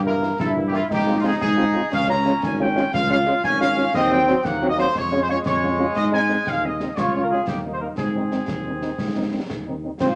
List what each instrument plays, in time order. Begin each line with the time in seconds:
Already playing: tuba G2, trombone section A#3
0.05 french horn section E3 A#3 E4, trumpet section A#4
0.22 french horn section E3 A#3 E4, snare
0.39 tuba G2, trombone section E4, trumpet section A4, concert bass drum, snare
0.56 french horn section E3 A#3 E4
0.67 trumpet section G4
0.72 french horn section E3 A#3 E4, trumpet section F4, snare
0.90 tuba G#2, trombone section D#4, trumpet section G4, concert bass drum, snare
1.07 french horn section G#3 C4 F4
1.18 trumpet section F4
1.23 french horn section G#3 C4 F4, trumpet section G#4
1.41 tuba G#2, trumpet section G#4, concert bass drum, snare
1.56 french horn section G#3 C4 F4
1.74 french horn section G#3 C4 F4
1.92 tuba C#2, trombone section C#4, trumpet section F5, concert bass drum, snare, crash
2.08 french horn section G#3 C#4 F4, trumpet section A#5
2.25 french horn section G#3 C#4 F4, snare
2.42 tuba G#1, trumpet section G#5, concert bass drum, snare
2.59 french horn section G#3 C#4 F4, trumpet section G5
2.76 french horn section G#3 C#4 F4, snare
2.93 tuba C#2, trombone section F4, trumpet section F5, concert bass drum, snare
3.10 french horn section G#3 C#4 F4, trumpet section F5
3.26 french horn section G#3 C#4 F4
3.43 tuba G#1, trombone section C#4, trumpet section G#5, concert bass drum, snare
3.60 french horn section G#3 C#4 F4, trumpet section F5
3.77 french horn section G#3 C#4 F4
3.93 tuba D#2, trombone section C4, trumpet section D#5, concert bass drum, snare
4.11 french horn section F#3 C4 F#4, trumpet section G5
4.27 french horn section F#3 C4 F#4, snare
4.44 tuba D#2, trombone section A#3, trumpet section F#5, concert bass drum, snare
4.61 french horn section F#3 C4 F#4
4.69 trumpet section D#5
4.78 french horn section F#3 C4 F#4, trumpet section C5, snare
4.94 tuba F2, trombone section G#3, trumpet section C#5, concert bass drum, snare
5.12 french horn section G#3 C#4 F4
5.21 trumpet section C5
5.29 french horn section G#3 C#4 F4, trumpet section C#5
5.46 tuba F2, trumpet section C#5, concert bass drum, snare
5.62 french horn section G#3 C#4 F4
5.78 french horn section G#3 C#4 F4
5.96 tuba G#2, trumpet section D#5, concert bass drum, snare, crash
6.12 french horn section G#3 C4 D#4, trumpet section G#5
6.29 french horn section G#3 C4 D#4, snare
6.47 tuba D#2, trumpet section F5, concert bass drum, snare
6.63 french horn section G#3 C4 D#4, trumpet section D#5
6.80 french horn section G#3 C4 D#4, snare
6.96 tuba C#2, trombone section F4, trumpet section C#5, concert bass drum, snare
7.13 french horn section G#3 C#4 F4, trumpet section C#5
7.23 trumpet section A#4
7.31 french horn section G#3 C#4 F4, trumpet section G#4
7.47 tuba D#2, trombone section D#4, trumpet section G4, concert bass drum, snare
7.65 french horn section D#3 A#3 D#4
7.73 trumpet section C5
7.79 french horn section D#3 A#3 D#4, trumpet section A#4
7.97 tuba G#2, trombone section C4, trumpet section G#4, concert bass drum, snare
8.15 french horn section D#3 C4 D#4
8.32 french horn section D#3 C4 D#4, snare
8.48 tuba D#2, concert bass drum, snare
8.66 french horn section D#3 C4 D#4
8.82 french horn section D#3 C4 D#4, snare
8.98 tuba G#2, concert bass drum, snare
9.15 french horn section D#3 C4 D#4
9.33 french horn section D#3 C4 D#4
9.50 tuba D#2, concert bass drum, snare
9.67 french horn section D#3 C4 D#4
9.84 french horn section D#3 C4 D#4
9.99 tuba G#2, euphonium C4, trombone section F4, trumpet section C5, concert bass drum, snare, crash